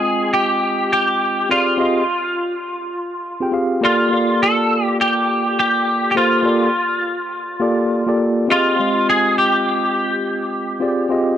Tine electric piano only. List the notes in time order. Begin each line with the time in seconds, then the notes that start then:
Already playing: G#3 C4 F4 D#5 G5
1.49 C4 F4 G4 G#4 D5
1.78 C4 F4 G4 G#4 D#5
3.40 C4 F4 G4 G#4 G5
3.52 C4 F4 G4 G#4 F5
3.81 A#3 F4 G4 A4 D5
4.09 A#3 F4 G4 A4
4.14 D5
6.15 A#3 F4 G4 A4 C5
6.43 A#3 F4 G4 A4 D5
7.60 A#3 F4 G4 A4 D5
8.06 A#3 F4 G4 A4 D5
8.48 C4 F4 G4 G#4 D#5
8.76 G#3 C4 F4 G4
8.81 D#5
10.80 C4 F4 G4 G#4 D5
11.09 C4 F4 G4 G#4 D#5